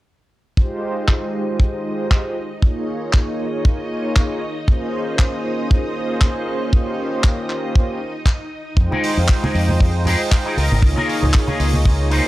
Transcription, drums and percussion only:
0.57 kick
1.08 kick, clap
1.60 kick
2.11 kick, clap
2.62 kick
3.13 kick, clap
3.65 kick
4.16 kick, clap
4.68 kick
5.19 kick, clap
5.71 kick
6.21 kick, clap
6.73 kick
7.24 kick, clap
7.50 clap
7.76 kick
8.26 kick, clap
8.77 kick
8.92 high conga
9.04 open hi-hat
9.28 kick, clap
9.44 high conga
9.55 open hi-hat
9.69 high conga
9.80 kick
10.05 open hi-hat, low conga
10.32 kick, clap
10.58 open hi-hat
10.72 high conga
10.82 kick
10.98 high conga
11.10 open hi-hat
11.23 low conga
11.34 kick, clap
11.48 high conga
11.60 open hi-hat
11.74 high conga
11.85 kick
12.11 open hi-hat

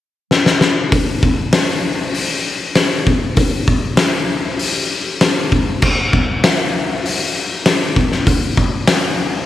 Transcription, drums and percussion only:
0.31 snare
0.46 snare
0.61 snare
0.92 kick, open hi-hat
1.23 kick
1.53 snare, open hi-hat
2.15 open hi-hat
2.75 snare, open hi-hat
3.07 kick
3.37 kick, open hi-hat
3.68 kick
3.97 snare, open hi-hat
4.59 open hi-hat
5.21 snare, open hi-hat
5.52 kick
5.82 kick, crash
6.13 kick
6.44 snare, open hi-hat
7.06 open hi-hat
7.66 snare, open hi-hat
7.96 kick
8.12 snare
8.27 kick, open hi-hat
8.57 kick
8.87 snare, open hi-hat

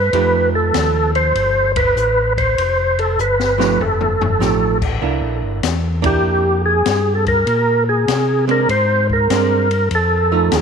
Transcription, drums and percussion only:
0.13 kick, ride
0.74 kick, snare, hi-hat pedal, ride
1.15 ride
1.35 kick, ride
1.76 kick, ride
1.97 hi-hat pedal
2.37 kick, ride
2.58 kick, ride
2.99 ride
3.19 hi-hat pedal
3.40 snare
3.60 snare
3.81 floor tom
4.01 floor tom
4.21 floor tom
4.41 snare, hi-hat pedal
4.82 kick, crash
5.02 kick
5.63 kick, snare, hi-hat pedal, ride
6.04 kick, ride
6.86 kick, snare, hi-hat pedal, ride
7.26 kick, ride
7.47 kick, ride
8.08 kick, snare, hi-hat pedal, ride
8.49 ride
8.69 kick, ride
9.10 kick
9.30 kick, snare, hi-hat pedal, ride
9.71 ride
9.91 kick, ride
10.52 kick, snare, hi-hat pedal, ride

